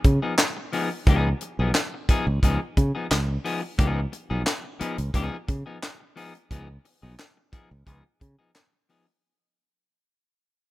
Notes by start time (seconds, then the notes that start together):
0.04 C#3, muted clean electric guitar stroke, kick, closed hi-hat
0.22 F3 B3 D#4 G#4
0.38 snare, clap, closed hi-hat
0.57 muted clean electric guitar stroke
0.73 F3 B3 D#4 G#4, open hi-hat
1.07 C#2 F3 B3 D#4 G#4, kick, closed hi-hat
1.41 muted clean electric guitar stroke, closed hi-hat
1.59 B1 F3 B3 D#4 G#4
1.75 snare, clap, closed hi-hat
1.94 muted clean electric guitar stroke
2.09 F3 B3 D#4 G#4, muted fingered electric bass stroke, kick, closed hi-hat
2.27 C#2, muted clean electric guitar stroke
2.43 C#2 F3 B3 D#4 G#4, kick, closed hi-hat
2.77 C#3, muted clean electric guitar stroke, kick, closed hi-hat
2.95 F3 B3 D#4 G#4
3.11 C#2, snare, clap, closed hi-hat
3.29 muted clean electric guitar stroke
3.45 F3 B3 D#4 G#4, open hi-hat
3.62 muted clean electric guitar stroke
3.78 C#2 F3 B3 D#4 G#4, kick, closed hi-hat
4.12 muted clean electric guitar stroke, closed hi-hat
4.30 B1 F3 B3 D#4 G#4
4.46 snare, clap, closed hi-hat
4.64 muted clean electric guitar stroke
4.80 F3 B3 D#4 G#4, muted fingered electric bass stroke, closed hi-hat
4.98 C#2, closed hi-hat
5.14 C#2 F3 B3 D#4 G#4, kick, closed hi-hat
5.48 C#3, muted clean electric guitar stroke, kick, closed hi-hat
5.66 F3 B3 D#4 G#4
5.82 snare, clap, closed hi-hat
6.00 muted clean electric guitar stroke
6.16 F3 B3 D#4 G#4, open hi-hat
6.35 closed hi-hat
6.51 C#2 F3 B3 D#4 G#4, kick, closed hi-hat
6.85 muted clean electric guitar stroke, open hi-hat
7.02 B1 F3 B3 D#4 G#4
7.19 snare, clap, closed hi-hat
7.37 muted clean electric guitar stroke
7.52 F3 B3 D#4 G#4, muted fingered electric bass stroke, kick, closed hi-hat
7.70 C#2, muted clean electric guitar stroke
7.86 C#2 F3 B3 D#4 G#4, kick, closed hi-hat
8.20 C#3, muted clean electric guitar stroke, kick, closed hi-hat
8.39 F3 B3 D#4 G#4
8.55 snare, clap, closed hi-hat
8.73 muted clean electric guitar stroke
8.89 F3 B3 D#4 G#4, open hi-hat
9.07 muted clean electric guitar stroke